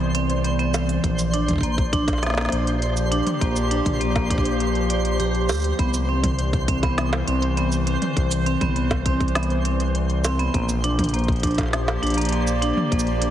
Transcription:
Already playing: analog synth bass C2, ambient pad E3 C5 D5, synth texture C5
0.15 vibraphone C4, closed hi-hat
0.30 closed hi-hat
0.44 vibraphone B3, closed hi-hat
0.59 vibraphone B3, closed hi-hat
0.74 vibraphone C4, closed hi-hat, high bongo, cabasa
0.89 closed hi-hat
1.04 analog synth bass A#1, ambient pad F3, kick, closed hi-hat
1.19 closed hi-hat, cabasa
1.34 vibraphone D4, closed hi-hat
1.48 kick, closed hi-hat, mid tom
1.51 kick
1.53 kick
1.56 kick
1.58 kick
1.61 vibraphone A#3, kick, closed hi-hat
1.75 ambient pad A#3, kick, closed hi-hat
1.93 vibraphone D4, kick, closed hi-hat
2.08 kick, closed hi-hat, high bongo
2.13 high bongo
2.18 high bongo
2.23 vibraphone A#3, snare, closed hi-hat, high bongo
2.26 snare, high bongo
2.30 ambient pad G4, snare, high bongo
2.34 vibraphone A#3, snare
2.38 snare, closed hi-hat, high bongo
2.41 snare
2.45 snare
2.49 analog synth bass A#1, vibraphone D4, snare, closed hi-hat
2.67 closed hi-hat
2.82 closed hi-hat
2.97 closed hi-hat, cabasa
3.12 vibraphone D4, closed hi-hat
3.27 closed hi-hat, mid tom
3.41 analog synth bass A#1, vibraphone A#3, kick, closed hi-hat
3.56 closed hi-hat, cabasa
3.71 vibraphone D4, closed hi-hat
3.86 analog synth bass A#1, kick, closed hi-hat, mid tom
4.01 vibraphone A#3, closed hi-hat
4.16 vibraphone A#3, kick, closed hi-hat, high bongo
4.30 vibraphone D4, kick, closed hi-hat
4.38 kick
4.45 closed hi-hat
4.60 closed hi-hat
4.75 closed hi-hat
4.90 vibraphone D5, closed hi-hat
5.05 closed hi-hat
5.20 analog synth bass A#1, vibraphone G4, closed hi-hat
5.35 closed hi-hat
5.49 analog synth bass D2, vibraphone G4, high bongo, cabasa
5.52 cabasa
5.54 cabasa
5.57 cabasa
5.59 cabasa
5.62 closed hi-hat, cabasa
5.79 analog synth bass C2, ambient pad E3, vibraphone B3, kick, closed hi-hat
5.94 closed hi-hat, cabasa
6.09 vibraphone C4
6.23 kick, closed hi-hat, mid tom
6.39 closed hi-hat
6.53 kick, closed hi-hat
6.68 vibraphone C4, kick, closed hi-hat
6.83 vibraphone B3, kick, closed hi-hat, high bongo
6.98 vibraphone B3, snare, closed hi-hat
7.02 ambient pad C5
7.13 closed hi-hat, high bongo
7.27 analog synth bass C2, vibraphone C4, closed hi-hat
7.42 closed hi-hat
7.57 vibraphone B3, closed hi-hat
7.72 closed hi-hat, cabasa
7.87 vibraphone C4, closed hi-hat
8.02 closed hi-hat, mid tom
8.17 analog synth bass C2, kick, closed hi-hat
8.31 closed hi-hat, cabasa
8.46 vibraphone C4, closed hi-hat
8.61 analog synth bass C2, vibraphone B3, kick, closed hi-hat, mid tom
8.76 vibraphone B3, closed hi-hat
8.91 kick, closed hi-hat, high bongo
9.06 vibraphone C4, kick, closed hi-hat
9.20 kick, closed hi-hat
9.28 closed hi-hat
9.35 vibraphone B3, snare, closed hi-hat
9.43 closed hi-hat
9.50 closed hi-hat
9.65 vibraphone C4, closed hi-hat
9.80 closed hi-hat
9.95 closed hi-hat
10.10 closed hi-hat
10.25 vibraphone C4, closed hi-hat, high bongo, cabasa
10.39 vibraphone B3, closed hi-hat
10.54 analog synth bass A#1, ambient pad F3, vibraphone A#3, kick, closed hi-hat
10.69 closed hi-hat, cabasa
10.81 vibraphone D4, ambient pad G4, closed hi-hat
10.99 kick, closed hi-hat, mid tom
11.04 closed hi-hat
11.09 closed hi-hat
11.14 vibraphone A#3, ambient pad A#3, closed hi-hat
11.19 closed hi-hat
11.24 closed hi-hat
11.28 kick, closed hi-hat
11.32 closed hi-hat
11.36 closed hi-hat
11.40 kick, closed hi-hat
11.43 vibraphone D4, closed hi-hat
11.47 ambient pad D5, closed hi-hat
11.51 closed hi-hat
11.54 kick, closed hi-hat
11.58 closed hi-hat, high bongo
11.61 high bongo
11.63 high bongo
11.66 high bongo
11.68 high bongo
11.71 snare, closed hi-hat, high bongo
11.88 closed hi-hat, high bongo
12.03 analog synth bass A#1, vibraphone D4, closed hi-hat
12.07 closed hi-hat
12.10 closed hi-hat
12.14 vibraphone A#3, closed hi-hat
12.18 closed hi-hat
12.21 closed hi-hat
12.25 closed hi-hat
12.29 vibraphone A#3, closed hi-hat
12.32 closed hi-hat
12.47 closed hi-hat, cabasa
12.62 vibraphone D4, closed hi-hat
12.77 mid tom
12.92 analog synth bass A#1, vibraphone A#3, kick, closed hi-hat
12.99 cabasa
13.07 closed hi-hat
13.22 vibraphone D4, closed hi-hat

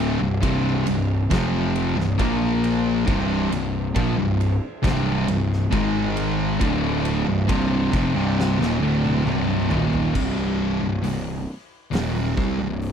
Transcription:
Already playing: picked electric bass D1, distorted electric guitar D2 A2 D3
0.20 picked electric bass C1, distorted electric guitar C2 G2
0.42 picked electric bass C1, distorted electric guitar C2 G2 C3, kick, ride
0.87 picked electric bass C1, distorted electric guitar C2 G2, ride
1.30 picked electric bass F1, distorted electric guitar F2 C3 F3, kick, snare, ride
1.76 ride
1.97 picked electric bass C1, distorted electric guitar C2 G2, snare
2.18 picked electric bass A#1, distorted electric guitar A#2 F3 A#3, kick, ride
2.64 ride
3.06 picked electric bass C1, distorted electric guitar C2 G2 C3, kick, ride
3.51 picked electric bass C1, distorted electric guitar C2 G2, ride
3.95 picked electric bass A#1, distorted electric guitar A#2 F3, kick, ride
4.17 picked electric bass C1, distorted electric guitar C2 G2
4.41 ride
4.82 picked electric bass C1, distorted electric guitar C2 G2 C3, kick, ride
4.87 snare
5.28 picked electric bass C1, distorted electric guitar C2 G2, ride
5.53 snare
5.71 picked electric bass G#1, distorted electric guitar G#2 D#3 G#3, kick, ride
6.17 ride
6.60 picked electric bass D1, distorted electric guitar D2 A2 D3, kick, ride
7.05 ride
7.27 picked electric bass C1, distorted electric guitar C2 G2
7.48 picked electric bass C1, distorted electric guitar C2 G2 C3, kick, ride
7.93 picked electric bass F1, distorted electric guitar F2 C3, kick, ride
8.15 picked electric bass C1, distorted electric guitar C2 G2 C3
8.40 snare
8.59 picked electric bass D#1, distorted electric guitar D#2 A#2, snare
8.81 picked electric bass D1, distorted electric guitar D2 A2 D3
9.04 high tom
9.26 picked electric bass C1, distorted electric guitar C2 G2 C3, mid tom
9.70 picked electric bass D#1, distorted electric guitar D#2 A#2 D#3, floor tom
9.93 floor tom
10.14 picked electric bass C1, distorted electric guitar C2 G2 C3, kick, crash
10.81 picked electric bass C1, distorted electric guitar C2 G2
11.02 picked electric bass C1, distorted electric guitar C2 G2, open hi-hat
11.91 picked electric bass D#1, distorted electric guitar D#2 A#2 D#3, open hi-hat
11.95 snare
12.36 picked electric bass C2, distorted electric guitar C3 G3, kick
12.59 picked electric bass C1, distorted electric guitar C2 G2
12.82 open hi-hat

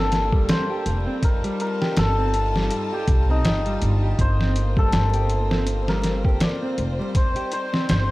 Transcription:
Already playing: upright bass G1, violin section G3 A#3 D4 F4, clean electric guitar C4, hammered dulcimer G4 A4
0.12 snare, closed hi-hat
0.33 clean electric guitar G3, kick
0.49 hammered dulcimer C5, snare, closed hi-hat
0.70 clean electric guitar G4
0.86 upright bass F1, closed hi-hat
1.07 clean electric guitar C4
1.23 violin section D#4 A5, hammered dulcimer A#4, kick, closed hi-hat
1.44 clean electric guitar G3, closed hi-hat
1.60 hammered dulcimer A#4, closed hi-hat
1.81 clean electric guitar G4, snare
1.97 upright bass G1, hammered dulcimer A4, snare, closed hi-hat
2.18 clean electric guitar C4
2.34 closed hi-hat
2.55 clean electric guitar G3, snare
2.71 closed hi-hat
2.92 clean electric guitar G4, hammered dulcimer G4
3.07 upright bass C2, kick, closed hi-hat
3.29 clean electric guitar C4, hammered dulcimer D#4
3.45 upright bass G1, snare, closed hi-hat
3.66 clean electric guitar G3, closed hi-hat
3.82 upright bass G1, closed hi-hat
4.03 clean electric guitar G4
4.19 upright bass G1, violin section A#3 C4 C5, hammered dulcimer C5, kick, closed hi-hat
4.40 clean electric guitar C4, snare
4.56 closed hi-hat
4.77 clean electric guitar G3, hammered dulcimer A4, kick
4.92 upright bass G1, snare, closed hi-hat
5.13 clean electric guitar G4, closed hi-hat
5.30 closed hi-hat
5.51 clean electric guitar C4, snare
5.67 closed hi-hat
5.88 clean electric guitar G3, hammered dulcimer A#4, snare
6.04 snare, closed hi-hat
6.25 clean electric guitar G4, kick
6.40 hammered dulcimer D5, snare, closed hi-hat
6.62 clean electric guitar C4
6.78 upright bass F1, closed hi-hat
6.99 clean electric guitar G3
7.15 violin section G3 D#4, hammered dulcimer C5, kick, closed hi-hat
7.36 clean electric guitar G4, closed hi-hat
7.52 hammered dulcimer C5, closed hi-hat
7.73 clean electric guitar C4, snare
7.89 upright bass G1, hammered dulcimer C5, snare, closed hi-hat

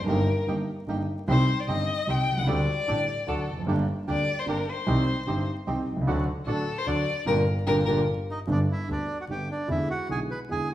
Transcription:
0.02 grand piano F#2
0.06 grand piano G1 G2 D#3 G3 A#3 G4, double bass G1, bandoneon A#3 D#4 G4, violin A#4
0.47 grand piano G1 G2 D#3 G3 A#3 G4, double bass G1, bandoneon A#3 D#4 G4
0.87 grand piano G1 G2 D#3 G3 A#3 G4, double bass G1, bandoneon A#3 D#4 G4
1.27 grand piano C2 C3 D#3 G3 C4 G4, double bass C2, bandoneon C4 D#4 G4, violin C5
1.60 violin D5
1.68 grand piano G1 G2 D#3 G3 C4 G4, double bass G1, bandoneon C4 D#4 G4, violin D#5
2.07 grand piano C2 C3 D#3 G3 C4 G4, double bass C2, bandoneon C4 D#4 G4, violin G5
2.28 grand piano B1, double bass C2
2.37 grand piano C2, violin F#5
2.42 grand piano C#2
2.47 grand piano D2 D3 G3 A3 G4, double bass D2, bandoneon A3 D4 G4, violin D5
2.87 grand piano A1 A2 D3 G3 A3 G4, double bass A1, bandoneon A3 D4 G4
3.26 grand piano D2 D3 F#3 A3 F#4, double bass D2, bandoneon A3 D4 F#4, violin A4
3.48 double bass F1, grand piano E2
3.57 grand piano F2
3.61 grand piano F#2
3.66 grand piano G1 G2 D3 G3 A#3 G4, double bass G1, bandoneon A#3 D4 G4
4.07 grand piano D2 D3 G3 A#3 G4, double bass D2, bandoneon A#3 D4 G4, violin D5
4.39 violin C5
4.46 grand piano G1 G2 D3 G3 A#3 G4, double bass G1, bandoneon A#3 D4 G4
4.50 violin A#4
4.69 violin C5
4.86 grand piano C2 C3 D#3 G3 C4 G4, double bass C2, bandoneon C4 D#4 G4
5.26 grand piano G1 G2 D#3 G3 C4 G4, double bass G1, bandoneon C4 D#4 G4
5.67 grand piano C2 C3 D#3 G3 C4 G4, double bass C2, bandoneon C4 D#4 G4
5.87 double bass C2
5.93 grand piano B1 C2
6.01 grand piano C#2
6.06 double bass D2, grand piano D2 D3 F#3 A3 F#4, bandoneon A3 D4 F#4
6.46 double bass A1, grand piano A1 A2 D3 F#3 A3 F#4, bandoneon A3 D4 F#4, violin A4
6.78 violin C5
6.86 grand piano D2 D3 F#3 A3 F#4, double bass D2, bandoneon A3 D4 F#4, violin D5
7.26 double bass G1, grand piano A#2 D3 G3, bandoneon A#3 D4 G4, violin A#4
7.67 double bass G1, grand piano A#2 D3 G3, bandoneon A#3 D4 G4, violin A#4
7.85 double bass G1, grand piano A#2 D3 G3, bandoneon A#3 D4 G4, violin A#4
8.30 bandoneon D#4 D#5
8.47 grand piano G1 G2 D3 G3 B3 G4, double bass G1, bandoneon D4
8.52 bandoneon D5
8.71 bandoneon E4 E5
8.88 grand piano D2 D3 G3 B3 G4, double bass D2, bandoneon D4
8.92 bandoneon D5
9.20 bandoneon F#4 F#5
9.29 double bass G1, grand piano G1 G2 D3 G3 B3 G4, bandoneon G4 G5
9.51 bandoneon D4 D5
9.68 grand piano E2 D3 E3 G#3 B3 E4, double bass E2, bandoneon E4 E5
9.90 bandoneon F#4 F#5
10.09 grand piano B1 B2 D3 G#3 B3 E4, double bass B1, bandoneon G#4 G#5
10.30 bandoneon B4 B5
10.49 grand piano E2 D3 E3 G#3 B3 E4, double bass E2, bandoneon G#4 G#5

